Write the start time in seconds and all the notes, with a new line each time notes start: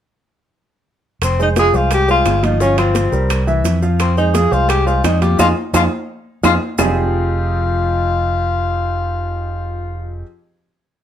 1.22 F1 C4, high bongo, high conga, high timbale, claves, maracas
1.39 G#3 D#4 G#4 C5, high bongo, high conga, maracas
1.56 F3 F4 G#4 F5, high bongo, high conga, high timbale, maracas
1.73 C2 G#3 F4 G#4 C5, high bongo, high conga, maracas
1.91 G4, high bongo, high conga, high timbale, claves, maracas
2.08 G#3 F4 G#4 C5, high bongo, high conga, maracas
2.25 G1, high bongo, low bongo, high conga, high timbale, low timbale, claves, maracas
2.43 F3 D#4 F4 F5, high conga, high timbale, maracas
2.60 F3 C#4 F4 F5, high bongo, maracas
2.77 F3 C4 F4 F5, high bongo, high conga, high timbale, claves, maracas
2.95 high bongo, high conga, high timbale, maracas
3.12 C2 G3 G4 A#4, high bongo, high conga, maracas
3.30 high bongo, high conga, high timbale, claves, maracas
3.47 E3 E4 E5, high bongo, high conga, maracas
3.64 F2, high bongo, low bongo, high conga, high timbale, maracas
3.82 F3 F4 F5, maracas
4.00 C4, high bongo, high conga, high timbale, claves, maracas
4.17 G#3 D#4 G#4 C5, high bongo, high conga, maracas
4.34 F3 F4 G#4 F5, high bongo, high conga, high timbale, maracas
4.51 C2 G#3 F4 G#4 C5, high bongo, high conga, maracas
4.69 G4, high bongo, high conga, high timbale, claves, maracas
4.86 G#3 F4 G#4 C5, high bongo, high conga, maracas
5.04 F2 D#4, high bongo, low bongo, high conga, high timbale, low timbale, claves, maracas
5.21 F3 F4 G4 F5, high conga, high timbale, maracas
5.39 F2 D#4 F4 G#4, low bongo, high conga, high timbale, claves, maracas
5.73 F2 D#4 F4 G#4, low bongo, high conga, high timbale, claves, maracas
6.43 F2 D#4 F4 G#4, low bongo, high conga, high timbale, claves, maracas
6.78 F1 F3 C4 D#4 F4 G4 G#4, low bongo, low conga, low timbale, claves, maracas